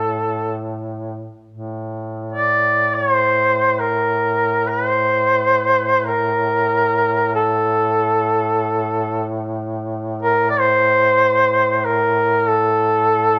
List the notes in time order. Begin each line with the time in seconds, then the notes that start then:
Already playing: A2 A4
1.50 A2
2.32 D5
2.94 C#5
3.13 C5
3.80 A#4
4.69 B4
4.88 C5
6.07 A#4
7.35 A4
10.22 A#4
10.51 D5
10.59 C5
11.78 C5
11.85 A#4
12.48 A4